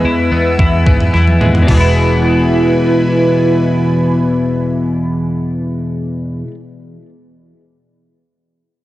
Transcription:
0, 0, Header, 1, 5, 480
1, 0, Start_track
1, 0, Key_signature, 4, "major"
1, 0, Tempo, 545455
1, 1479, Time_signature, 4, 2, 24, 8
1, 7780, End_track
2, 0, Start_track
2, 0, Title_t, "Analog synth pad"
2, 0, Program_c, 0, 89
2, 0, Note_on_c, 0, 71, 70
2, 0, Note_on_c, 0, 76, 62
2, 0, Note_on_c, 0, 80, 68
2, 0, Note_on_c, 0, 88, 74
2, 1447, Note_off_c, 0, 71, 0
2, 1464, Note_off_c, 0, 76, 0
2, 1464, Note_off_c, 0, 88, 0
2, 1465, Note_off_c, 0, 80, 0
2, 1481, Note_on_c, 0, 83, 77
2, 1482, Note_on_c, 0, 64, 65
2, 1483, Note_on_c, 0, 71, 65
2, 1485, Note_on_c, 0, 52, 73
2, 1485, Note_on_c, 0, 80, 63
2, 5669, Note_off_c, 0, 83, 0
2, 5670, Note_off_c, 0, 64, 0
2, 5671, Note_off_c, 0, 71, 0
2, 5673, Note_off_c, 0, 52, 0
2, 5673, Note_off_c, 0, 80, 0
2, 7780, End_track
3, 0, Start_track
3, 0, Title_t, "Clean electric guitar"
3, 0, Program_c, 1, 27
3, 0, Note_on_c, 1, 40, 73
3, 0, Note_on_c, 1, 56, 46
3, 0, Note_on_c, 1, 59, 50
3, 43, Note_on_c, 1, 64, 54
3, 276, Note_off_c, 1, 59, 0
3, 280, Note_on_c, 1, 59, 53
3, 518, Note_off_c, 1, 64, 0
3, 521, Note_on_c, 1, 64, 51
3, 755, Note_off_c, 1, 59, 0
3, 759, Note_on_c, 1, 59, 53
3, 997, Note_off_c, 1, 64, 0
3, 1000, Note_on_c, 1, 64, 53
3, 1236, Note_off_c, 1, 56, 0
3, 1239, Note_on_c, 1, 56, 43
3, 1420, Note_off_c, 1, 40, 0
3, 1431, Note_on_c, 1, 40, 64
3, 1472, Note_on_c, 1, 47, 67
3, 1503, Note_on_c, 1, 52, 69
3, 1530, Note_off_c, 1, 56, 0
3, 1533, Note_on_c, 1, 56, 76
3, 1557, Note_off_c, 1, 59, 0
3, 1561, Note_on_c, 1, 59, 70
3, 1584, Note_off_c, 1, 64, 0
3, 1587, Note_on_c, 1, 64, 76
3, 5654, Note_off_c, 1, 40, 0
3, 5695, Note_off_c, 1, 47, 0
3, 5726, Note_off_c, 1, 52, 0
3, 5756, Note_off_c, 1, 56, 0
3, 5784, Note_off_c, 1, 59, 0
3, 5810, Note_off_c, 1, 64, 0
3, 7780, End_track
4, 0, Start_track
4, 0, Title_t, "Picked electric bass"
4, 0, Program_c, 2, 34
4, 43, Note_on_c, 2, 40, 73
4, 252, Note_off_c, 2, 40, 0
4, 280, Note_on_c, 2, 40, 70
4, 491, Note_off_c, 2, 40, 0
4, 521, Note_on_c, 2, 40, 79
4, 731, Note_off_c, 2, 40, 0
4, 762, Note_on_c, 2, 44, 69
4, 972, Note_off_c, 2, 44, 0
4, 1003, Note_on_c, 2, 40, 69
4, 1212, Note_off_c, 2, 40, 0
4, 1241, Note_on_c, 2, 39, 72
4, 1451, Note_off_c, 2, 39, 0
4, 1483, Note_on_c, 2, 28, 73
4, 5670, Note_off_c, 2, 28, 0
4, 7780, End_track
5, 0, Start_track
5, 0, Title_t, "Drums"
5, 521, Note_on_c, 9, 36, 83
5, 521, Note_on_c, 9, 43, 54
5, 609, Note_off_c, 9, 36, 0
5, 609, Note_off_c, 9, 43, 0
5, 761, Note_on_c, 9, 36, 77
5, 849, Note_off_c, 9, 36, 0
5, 884, Note_on_c, 9, 43, 55
5, 972, Note_off_c, 9, 43, 0
5, 1002, Note_on_c, 9, 38, 37
5, 1090, Note_off_c, 9, 38, 0
5, 1122, Note_on_c, 9, 48, 46
5, 1210, Note_off_c, 9, 48, 0
5, 1243, Note_on_c, 9, 45, 66
5, 1331, Note_off_c, 9, 45, 0
5, 1363, Note_on_c, 9, 43, 65
5, 1451, Note_off_c, 9, 43, 0
5, 1481, Note_on_c, 9, 36, 84
5, 1483, Note_on_c, 9, 49, 66
5, 1569, Note_off_c, 9, 36, 0
5, 1571, Note_off_c, 9, 49, 0
5, 7780, End_track
0, 0, End_of_file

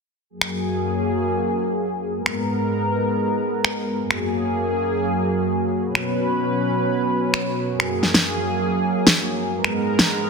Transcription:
0, 0, Header, 1, 3, 480
1, 0, Start_track
1, 0, Key_signature, 6, "major"
1, 0, Tempo, 461538
1, 310, Time_signature, 4, 2, 24, 8
1, 10710, End_track
2, 0, Start_track
2, 0, Title_t, "Analog synth pad"
2, 0, Program_c, 0, 89
2, 310, Note_on_c, 0, 42, 75
2, 310, Note_on_c, 0, 54, 67
2, 310, Note_on_c, 0, 58, 70
2, 310, Note_on_c, 0, 68, 85
2, 2211, Note_off_c, 0, 42, 0
2, 2211, Note_off_c, 0, 54, 0
2, 2211, Note_off_c, 0, 58, 0
2, 2211, Note_off_c, 0, 68, 0
2, 2230, Note_on_c, 0, 56, 69
2, 2231, Note_on_c, 0, 44, 75
2, 2231, Note_on_c, 0, 59, 71
2, 2231, Note_on_c, 0, 70, 86
2, 4131, Note_off_c, 0, 56, 0
2, 4131, Note_off_c, 0, 70, 0
2, 4132, Note_off_c, 0, 44, 0
2, 4132, Note_off_c, 0, 59, 0
2, 4149, Note_on_c, 0, 58, 70
2, 4149, Note_on_c, 0, 68, 86
2, 4150, Note_on_c, 0, 42, 78
2, 4150, Note_on_c, 0, 54, 72
2, 6051, Note_off_c, 0, 42, 0
2, 6051, Note_off_c, 0, 58, 0
2, 6051, Note_off_c, 0, 68, 0
2, 6071, Note_on_c, 0, 47, 77
2, 6071, Note_on_c, 0, 61, 68
2, 6072, Note_on_c, 0, 71, 83
2, 7972, Note_off_c, 0, 47, 0
2, 7972, Note_off_c, 0, 61, 0
2, 7972, Note_off_c, 0, 71, 0
2, 7992, Note_on_c, 0, 58, 69
2, 7992, Note_on_c, 0, 68, 87
2, 7993, Note_on_c, 0, 42, 77
2, 9868, Note_off_c, 0, 54, 0
2, 9892, Note_off_c, 0, 42, 0
2, 9892, Note_off_c, 0, 58, 0
2, 9892, Note_off_c, 0, 68, 0
2, 9909, Note_on_c, 0, 70, 85
2, 9910, Note_on_c, 0, 44, 80
2, 9910, Note_on_c, 0, 56, 72
2, 9910, Note_on_c, 0, 59, 73
2, 10710, Note_off_c, 0, 44, 0
2, 10710, Note_off_c, 0, 56, 0
2, 10710, Note_off_c, 0, 59, 0
2, 10710, Note_off_c, 0, 70, 0
2, 10710, End_track
3, 0, Start_track
3, 0, Title_t, "Drums"
3, 431, Note_on_c, 9, 26, 67
3, 535, Note_off_c, 9, 26, 0
3, 2351, Note_on_c, 9, 26, 67
3, 2455, Note_off_c, 9, 26, 0
3, 3791, Note_on_c, 9, 26, 58
3, 3895, Note_off_c, 9, 26, 0
3, 4270, Note_on_c, 9, 26, 71
3, 4374, Note_off_c, 9, 26, 0
3, 6190, Note_on_c, 9, 26, 75
3, 6294, Note_off_c, 9, 26, 0
3, 7631, Note_on_c, 9, 26, 63
3, 7735, Note_off_c, 9, 26, 0
3, 8111, Note_on_c, 9, 26, 74
3, 8215, Note_off_c, 9, 26, 0
3, 8350, Note_on_c, 9, 38, 31
3, 8454, Note_off_c, 9, 38, 0
3, 8470, Note_on_c, 9, 38, 102
3, 8574, Note_off_c, 9, 38, 0
3, 9429, Note_on_c, 9, 38, 101
3, 9533, Note_off_c, 9, 38, 0
3, 10030, Note_on_c, 9, 26, 70
3, 10134, Note_off_c, 9, 26, 0
3, 10388, Note_on_c, 9, 38, 102
3, 10492, Note_off_c, 9, 38, 0
3, 10710, End_track
0, 0, End_of_file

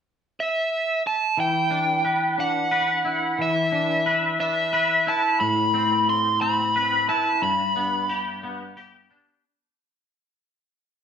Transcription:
0, 0, Header, 1, 3, 480
1, 0, Start_track
1, 0, Key_signature, 1, "minor"
1, 0, Tempo, 671141
1, 986, Time_signature, 6, 3, 24, 8
1, 7890, End_track
2, 0, Start_track
2, 0, Title_t, "Lead electric guitar"
2, 0, Program_c, 0, 29
2, 287, Note_on_c, 0, 76, 38
2, 728, Note_off_c, 0, 76, 0
2, 764, Note_on_c, 0, 81, 41
2, 999, Note_off_c, 0, 81, 0
2, 1002, Note_on_c, 0, 79, 38
2, 1685, Note_off_c, 0, 79, 0
2, 1717, Note_on_c, 0, 78, 41
2, 2442, Note_off_c, 0, 78, 0
2, 2445, Note_on_c, 0, 76, 42
2, 3141, Note_off_c, 0, 76, 0
2, 3149, Note_on_c, 0, 76, 48
2, 3637, Note_on_c, 0, 81, 48
2, 3642, Note_off_c, 0, 76, 0
2, 3855, Note_off_c, 0, 81, 0
2, 3864, Note_on_c, 0, 83, 52
2, 4356, Note_off_c, 0, 83, 0
2, 4359, Note_on_c, 0, 84, 56
2, 4577, Note_off_c, 0, 84, 0
2, 4587, Note_on_c, 0, 83, 54
2, 5068, Note_off_c, 0, 83, 0
2, 5071, Note_on_c, 0, 81, 55
2, 5312, Note_off_c, 0, 81, 0
2, 5315, Note_on_c, 0, 83, 51
2, 6244, Note_off_c, 0, 83, 0
2, 7890, End_track
3, 0, Start_track
3, 0, Title_t, "Clean electric guitar"
3, 0, Program_c, 1, 27
3, 982, Note_on_c, 1, 52, 34
3, 1221, Note_on_c, 1, 62, 31
3, 1464, Note_on_c, 1, 71, 33
3, 1693, Note_off_c, 1, 62, 0
3, 1701, Note_on_c, 1, 62, 35
3, 1938, Note_off_c, 1, 71, 0
3, 1941, Note_on_c, 1, 71, 38
3, 2179, Note_on_c, 1, 64, 33
3, 2418, Note_off_c, 1, 52, 0
3, 2421, Note_on_c, 1, 52, 37
3, 2653, Note_off_c, 1, 62, 0
3, 2661, Note_on_c, 1, 62, 33
3, 2901, Note_off_c, 1, 71, 0
3, 2904, Note_on_c, 1, 71, 35
3, 3135, Note_off_c, 1, 62, 0
3, 3144, Note_on_c, 1, 62, 36
3, 3379, Note_off_c, 1, 71, 0
3, 3382, Note_on_c, 1, 71, 38
3, 3383, Note_off_c, 1, 64, 0
3, 3624, Note_off_c, 1, 52, 0
3, 3626, Note_on_c, 1, 64, 37
3, 3865, Note_off_c, 1, 62, 0
3, 3866, Note_off_c, 1, 64, 0
3, 3866, Note_on_c, 1, 45, 40
3, 3887, Note_off_c, 1, 71, 0
3, 4104, Note_on_c, 1, 60, 38
3, 4579, Note_off_c, 1, 60, 0
3, 4588, Note_on_c, 1, 60, 37
3, 4833, Note_on_c, 1, 71, 39
3, 5067, Note_off_c, 1, 45, 0
3, 5070, Note_on_c, 1, 64, 38
3, 5307, Note_on_c, 1, 43, 41
3, 5308, Note_off_c, 1, 60, 0
3, 5309, Note_off_c, 1, 64, 0
3, 5550, Note_on_c, 1, 59, 37
3, 5786, Note_off_c, 1, 71, 0
3, 5789, Note_on_c, 1, 67, 38
3, 6023, Note_off_c, 1, 59, 0
3, 6032, Note_on_c, 1, 59, 40
3, 6263, Note_off_c, 1, 67, 0
3, 6272, Note_on_c, 1, 67, 45
3, 6508, Note_off_c, 1, 43, 0
3, 6512, Note_on_c, 1, 62, 40
3, 6751, Note_off_c, 1, 59, 0
3, 6751, Note_off_c, 1, 62, 0
3, 6751, Note_off_c, 1, 67, 0
3, 7890, End_track
0, 0, End_of_file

